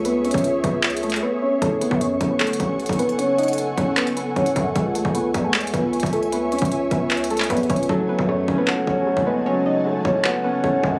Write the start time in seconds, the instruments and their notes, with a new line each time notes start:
Already playing: 808-style bass C#2, ambient pad G#4 C#5 E5 C#6
0.05 synth pluck B3 B4, closed hi-hat
0.25 synth pluck C#4 C#5, closed hi-hat
0.31 808-style bass C#2, kick, closed hi-hat
0.38 closed hi-hat
0.44 closed hi-hat
0.64 808-style bass C#2, synth pluck B3 B4, kick, closed hi-hat
0.83 clap, closed hi-hat
0.90 closed hi-hat
0.97 closed hi-hat
1.03 synth pluck A3 A4, closed hi-hat
1.10 clap, closed hi-hat
1.16 closed hi-hat
1.23 synth pluck B3 B4
1.42 synth pluck C#4 C#5
1.62 808-style bass F#1, synth pluck A3 A4, ambient pad A4 F#5 G#5 C#6, kick, closed hi-hat
1.81 synth pluck B3 B4, closed hi-hat
1.91 808-style bass F#2, kick
2.01 synth pluck C#4 C#5, closed hi-hat
2.21 808-style bass F#1, kick, closed hi-hat
2.30 synth pluck B3 B4
2.40 synth pluck A3 A4, clap, closed hi-hat
2.47 closed hi-hat
2.53 closed hi-hat
2.60 808-style bass A1, synth pluck C#4 C#5, kick, closed hi-hat
2.80 closed hi-hat
2.86 808-style bass F#1, kick, closed hi-hat
2.93 closed hi-hat
2.99 synth pluck B3 B4, closed hi-hat
3.09 closed hi-hat
3.19 synth pluck C#4 C#5, closed hi-hat
3.38 synth pluck D#4 D#5, closed hi-hat
3.43 closed hi-hat
3.48 closed hi-hat
3.53 closed hi-hat
3.58 closed hi-hat
3.77 808-style bass F#1, synth pluck C#4 C#5, kick, closed hi-hat
3.97 synth pluck B3 B4, clap, closed hi-hat
4.07 closed hi-hat
4.17 synth pluck B3 B4, closed hi-hat
4.36 808-style bass F#1, synth pluck C#4 C#5, kick, closed hi-hat
4.46 closed hi-hat
4.56 808-style bass F#2, kick, closed hi-hat
4.75 808-style bass C#2, synth pluck G#3 G#4, ambient pad C#5 E5 G#5 C#6, kick, closed hi-hat
4.95 synth pluck A3 A4, closed hi-hat
5.05 808-style bass C#2, kick
5.15 synth pluck B3 B4, closed hi-hat
5.34 808-style bass E2, kick, closed hi-hat
5.44 synth pluck A3 A4
5.54 synth pluck G#3 G#4, clap, closed hi-hat
5.61 closed hi-hat
5.67 closed hi-hat
5.74 808-style bass C#2, synth pluck B3 B4, kick, closed hi-hat
5.93 closed hi-hat
6.00 808-style bass C#2, kick, closed hi-hat
6.06 closed hi-hat
6.13 synth pluck A3 A4, closed hi-hat
6.23 closed hi-hat
6.32 synth pluck B3 B4, closed hi-hat
6.52 synth pluck C#4 C#5, closed hi-hat
6.59 808-style bass C#2, kick, closed hi-hat
6.65 closed hi-hat
6.72 closed hi-hat
6.91 808-style bass C#2, synth pluck B3 B4, kick, closed hi-hat
7.11 clap, closed hi-hat
7.17 closed hi-hat
7.24 closed hi-hat
7.30 synth pluck A3 A4, closed hi-hat
7.37 clap, closed hi-hat
7.43 closed hi-hat
7.50 808-style bass E2, synth pluck B3 B4, kick, closed hi-hat
7.57 closed hi-hat
7.63 closed hi-hat
7.70 808-style bass C#2, synth pluck C#4 C#5, kick, closed hi-hat
7.76 closed hi-hat
7.83 closed hi-hat
7.89 808-style bass F#1, grand piano F#3, synth pluck A3 A4, ambient pad C#5 F#5 A5, kick
8.09 synth pluck B3 B4
8.19 808-style bass F#2, kick
8.29 grand piano A3, synth pluck C#4 C#5
8.48 808-style bass F#1, grand piano C#4, kick
8.58 synth pluck B3 B4
8.68 synth pluck A3 A4, grand piano F#4, clap
8.87 808-style bass A1, grand piano C#4, synth pluck C#4 C#5, kick
9.07 grand piano A3
9.17 808-style bass F#1, kick
9.27 grand piano G#3, synth pluck B3 B4
9.46 grand piano F#3, synth pluck C#4 C#5
9.66 synth pluck D#4 D#5
9.86 grand piano A3
10.05 808-style bass F#1, grand piano C#4, synth pluck C#4 C#5, kick
10.25 synth pluck B3 B4, grand piano F#4, clap
10.44 synth pluck B3 B4, grand piano C#4
10.64 808-style bass F#1, grand piano A3, synth pluck C#4 C#5, kick
10.83 808-style bass F#2, grand piano G#3, kick